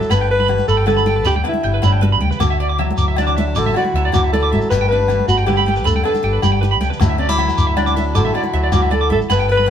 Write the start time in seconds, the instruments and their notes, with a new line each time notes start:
Already playing: steel-string acoustic guitar F#3 A3 F#4, alto saxophone A4
0.01 low conga, shekere
0.10 fingered electric bass G1, steel-string acoustic guitar G2 A4, alto saxophone B4, clean electric guitar B5, muted conga, low conga, low agogo, shekere
0.21 clean electric guitar G5
0.30 clean electric guitar B4, alto saxophone B4
0.40 clean electric guitar B5, high conga
0.48 steel-string acoustic guitar G3, low conga, low agogo
0.58 muted conga, shekere
0.68 fingered electric bass G1, alto saxophone A4, clean electric guitar B5, shekere
0.77 clean electric guitar G5
0.86 steel-string acoustic guitar D3, alto saxophone A4, clean electric guitar B4, high conga, low agogo, shekere
0.96 clean electric guitar B5, low conga, shekere
1.06 steel-string acoustic guitar D4, clean electric guitar G5, muted conga, shekere
1.16 clean electric guitar B4
1.25 fingered electric bass D2, steel-string acoustic guitar G2 D4, alto saxophone G4, clean electric guitar B5, shekere
1.35 clean electric guitar G5, high conga, low conga
1.44 alto saxophone E4, clean electric guitar B4, muted steel-string acoustic guitar stroke, low agogo
1.54 muted conga, low conga
1.63 fingered electric bass G1, steel-string acoustic guitar G3, clean electric guitar G5
1.74 clean electric guitar B4
1.82 fingered electric bass G1, steel-string acoustic guitar A2, alto saxophone D4, clean electric guitar B5, high conga, low conga, low agogo, shekere
1.93 clean electric guitar G5
2.01 steel-string acoustic guitar B2, clean electric guitar B4, muted conga, low conga
2.12 clean electric guitar B5
2.21 fingered electric bass D2, steel-string acoustic guitar C#3, clean electric guitar G5, high conga
2.31 clean electric guitar B4, low conga, shekere
2.40 fingered electric bass D2, steel-string acoustic guitar D3 F#4, clean electric guitar D6, muted conga, low conga, low agogo, shekere
2.50 clean electric guitar E5
2.60 steel-string acoustic guitar E4, clean electric guitar D5
2.69 clean electric guitar D6
2.78 steel-string acoustic guitar F#3, clean electric guitar E5, low conga, low agogo
2.91 muted conga
2.98 fingered electric bass D2, clean electric guitar D6, shekere
3.08 clean electric guitar E5
3.16 steel-string acoustic guitar A2, clean electric guitar D5, high conga, low agogo, shekere
3.21 alto saxophone D4
3.27 clean electric guitar D6, low conga, shekere
3.37 steel-string acoustic guitar F#4, clean electric guitar E5, muted conga, shekere
3.55 fingered electric bass A1, steel-string acoustic guitar D3 F#4, alto saxophone A4, clean electric guitar D6, shekere
3.66 clean electric guitar E5, high conga, low conga
3.74 steel-string acoustic guitar E4, alto saxophone F#4, clean electric guitar D5, low agogo
3.85 muted conga, low conga
3.94 fingered electric bass D2, steel-string acoustic guitar F#3, clean electric guitar E5
4.05 clean electric guitar D5
4.12 fingered electric bass D2, steel-string acoustic guitar D3, alto saxophone F#4, clean electric guitar D6, high conga, low conga, low agogo, shekere
4.24 clean electric guitar E5
4.32 steel-string acoustic guitar E3, alto saxophone A4, clean electric guitar D5, muted conga, low conga
4.43 clean electric guitar D6
4.52 fingered electric bass A1, steel-string acoustic guitar F#3, clean electric guitar E5, high conga
4.61 low conga, shekere
4.70 fingered electric bass G1, steel-string acoustic guitar G2 G3, alto saxophone B4, muted clean electric guitar stroke, muted conga, low conga, low agogo, shekere
4.74 steel-string acoustic guitar A3 D4 A4
4.81 clean electric guitar G5, low conga
4.88 alto saxophone B4, clean electric guitar B4
4.92 steel-string acoustic guitar D4
4.99 high conga, low conga
5.08 steel-string acoustic guitar G3, low conga, low agogo, shekere
5.20 muted conga
5.28 fingered electric bass G1, alto saxophone F#4, clean electric guitar B5, low conga, shekere
5.38 clean electric guitar G5
5.46 steel-string acoustic guitar D3, alto saxophone G4, clean electric guitar B4, high conga, low conga, low agogo, shekere
5.57 clean electric guitar B5, low conga
5.66 steel-string acoustic guitar D4, clean electric guitar G5, muted conga, low conga
5.76 clean electric guitar B4, shekere
5.84 fingered electric bass D2, steel-string acoustic guitar G2 D4, alto saxophone A4, clean electric guitar B5, shekere
5.96 clean electric guitar G5, high conga, low conga
6.04 steel-string acoustic guitar D4, alto saxophone A4, clean electric guitar B4, low agogo
6.15 muted conga, shekere
6.23 fingered electric bass G1, steel-string acoustic guitar G3, clean electric guitar G5, low conga
6.33 clean electric guitar B4
6.42 fingered electric bass G1, alto saxophone G4, clean electric guitar B5, high conga, low conga, low agogo, shekere
6.52 clean electric guitar G5
6.61 clean electric guitar B4, muted conga, low conga, shekere
6.71 clean electric guitar B5
6.81 fingered electric bass C#2, steel-string acoustic guitar C#3, clean electric guitar G5, high conga, shekere
6.90 clean electric guitar B4, low conga, shekere
7.00 fingered electric bass D2, steel-string acoustic guitar D3 F#3 A3 E4 F#4, muted clean electric guitar stroke, muted conga, low conga, low agogo, shekere
7.09 clean electric guitar E5
7.18 steel-string acoustic guitar C#4, clean electric guitar D5
7.29 steel-string acoustic guitar E4, clean electric guitar D6, high conga
7.38 steel-string acoustic guitar F#3, clean electric guitar E5, low conga, low agogo
7.48 muted conga, shekere
7.57 fingered electric bass D2, clean electric guitar D6, shekere
7.67 clean electric guitar E5
7.77 steel-string acoustic guitar A2, alto saxophone D4, clean electric guitar D5, high conga, low agogo, shekere
7.86 clean electric guitar D6, low conga, shekere
7.96 steel-string acoustic guitar F#4, clean electric guitar E5, muted conga, shekere
8.15 fingered electric bass A1, steel-string acoustic guitar D3 F#4, alto saxophone A4, clean electric guitar D6, shekere
8.25 clean electric guitar E5, high conga, low conga
8.34 steel-string acoustic guitar E4, alto saxophone F#4, clean electric guitar D5, low agogo
8.44 muted conga, low conga
8.53 fingered electric bass D2, steel-string acoustic guitar F#3, clean electric guitar E5
8.63 clean electric guitar D5
8.72 fingered electric bass D2, steel-string acoustic guitar D3, alto saxophone F#4, clean electric guitar D6, high conga, low conga, low agogo, shekere
8.82 clean electric guitar E5
8.91 steel-string acoustic guitar E3, alto saxophone A4, clean electric guitar D5, muted conga, low conga
9.01 clean electric guitar D6
9.10 fingered electric bass A1, alto saxophone A4, clean electric guitar E5, muted steel-string acoustic guitar stroke, high conga
9.21 low conga, shekere
9.30 fingered electric bass G1, steel-string acoustic guitar G2 A4, alto saxophone B4, clean electric guitar B5, muted conga, low conga, low agogo, shekere
9.39 clean electric guitar G5
9.49 steel-string acoustic guitar D4, clean electric guitar B4, alto saxophone B4
9.57 clean electric guitar B5, high conga
9.66 steel-string acoustic guitar G3